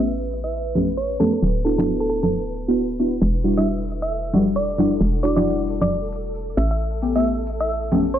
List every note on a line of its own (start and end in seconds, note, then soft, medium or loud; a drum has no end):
0.00 1.18 A1 medium
0.00 3.23 B4 medium
0.00 0.11 E5 medium
0.08 tambourine soft
0.21 tambourine soft
0.30 open hi-hat medium
0.30 tambourine medium
0.44 0.75 E5 medium
0.53 tambourine soft
0.66 tambourine soft
0.75 0.86 A3 medium
0.75 0.86 B3 medium
0.75 0.86 C#4 medium
0.75 0.86 G4 medium
0.75 open hi-hat loud
0.75 tambourine medium
0.75 high conga medium
0.89 tambourine soft
0.97 1.42 C#5 medium
0.97 tambourine soft
1.11 tambourine soft
1.20 1.31 A3 medium
1.20 1.31 B3 medium
1.20 1.31 C#4 medium
1.20 1.31 G4 medium
1.20 1.29 A4 medium
1.20 open hi-hat medium
1.20 tambourine medium
1.20 high conga medium
1.33 1.39 A4 medium
1.33 tambourine soft
1.42 3.20 D1 medium
1.42 tambourine soft
1.56 tambourine soft
1.65 1.76 B3 medium
1.65 1.76 D4 medium
1.65 1.76 E4 medium
1.65 1.76 F#4 medium
1.65 1.73 A4 medium
1.65 open hi-hat medium
1.65 tambourine medium
1.78 2.65 B3 medium
1.78 2.65 D4 medium
1.78 2.65 E4 medium
1.78 2.65 F#4 loud
1.78 1.84 A4 medium
1.78 tambourine soft
1.78 high conga medium
1.87 tambourine soft
2.00 2.06 A4 medium
2.00 tambourine soft
2.09 2.18 A4 medium
2.09 open hi-hat medium
2.09 tambourine medium
2.23 2.85 A4 medium
2.23 tambourine soft
2.23 high conga medium
2.32 tambourine soft
2.45 tambourine soft
2.54 open hi-hat loud
2.54 tambourine medium
2.68 2.81 B3 medium
2.68 2.81 D4 medium
2.68 2.81 E4 medium
2.68 2.81 F#4 medium
2.68 tambourine soft
2.77 tambourine soft
2.90 tambourine soft
2.99 3.10 B3 medium
2.99 3.10 D4 medium
2.99 3.10 E4 medium
2.99 3.10 F#4 medium
2.99 open hi-hat medium
2.99 tambourine medium
3.13 tambourine soft
3.21 4.99 E1 medium
3.21 8.19 A4 medium
3.21 tambourine soft
3.35 tambourine soft
3.44 3.55 G3 medium
3.44 3.55 D4 medium
3.44 3.55 E4 medium
3.44 3.55 F#4 medium
3.44 open hi-hat loud
3.44 tambourine medium
3.57 3.65 G3 medium
3.57 3.65 D4 medium
3.57 3.65 E4 medium
3.57 3.65 F#4 loud
3.57 3.70 E5 medium
3.57 tambourine soft
3.66 tambourine soft
3.80 tambourine soft
3.89 open hi-hat medium
3.89 tambourine medium
4.02 4.33 E5 medium
4.02 tambourine soft
4.11 tambourine soft
4.25 tambourine soft
4.33 4.44 G3 medium
4.33 4.44 D4 medium
4.33 4.44 E4 medium
4.33 4.44 F#4 medium
4.33 open hi-hat loud
4.33 tambourine medium
4.33 high conga medium
4.47 tambourine soft
4.56 5.01 D5 medium
4.56 tambourine soft
4.69 tambourine soft
4.78 4.89 G3 medium
4.78 4.89 D4 medium
4.78 4.89 E4 medium
4.78 4.89 F#4 loud
4.78 open hi-hat medium
4.78 tambourine medium
4.78 high conga medium
4.92 tambourine soft
5.01 6.56 E1 medium
5.01 tambourine soft
5.14 tambourine soft
5.23 5.35 G3 medium
5.23 5.35 D4 medium
5.23 5.35 E4 medium
5.23 5.35 F#4 medium
5.23 5.34 D5 medium
5.23 open hi-hat medium
5.23 tambourine medium
5.36 6.56 G3 medium
5.36 6.56 D4 medium
5.36 6.56 E4 medium
5.36 6.56 F#4 loud
5.36 5.49 D5 medium
5.36 tambourine soft
5.36 high conga medium
5.45 tambourine soft
5.59 tambourine soft
5.68 open hi-hat medium
5.68 tambourine medium
5.81 5.94 D5 medium
5.81 tambourine soft
5.81 high conga medium
5.90 tambourine soft
6.04 tambourine soft
6.12 open hi-hat loud
6.12 tambourine medium
6.26 tambourine soft
6.35 tambourine soft
6.49 tambourine soft
6.57 8.19 A1 medium
6.57 6.66 E5 medium
6.57 open hi-hat medium
6.57 tambourine medium
6.71 6.77 E5 medium
6.71 tambourine soft
6.80 tambourine soft
6.93 tambourine soft
7.02 7.13 A3 medium
7.02 7.13 B3 medium
7.02 7.13 C#4 medium
7.02 7.13 G4 medium
7.02 open hi-hat loud
7.02 tambourine medium
7.16 7.23 A3 medium
7.16 7.23 B3 medium
7.16 7.23 C#4 medium
7.16 7.23 G4 loud
7.16 7.28 E5 medium
7.16 tambourine soft
7.24 tambourine soft
7.38 tambourine soft
7.47 open hi-hat medium
7.47 tambourine medium
7.60 7.92 E5 medium
7.60 tambourine soft
7.69 tambourine soft
7.83 tambourine soft
7.92 8.03 A3 medium
7.92 8.03 B3 medium
7.92 8.03 C#4 medium
7.92 8.03 G4 medium
7.92 open hi-hat loud
7.92 tambourine medium
7.92 high conga medium
8.05 tambourine soft
8.14 8.19 C#5 medium
8.14 tambourine soft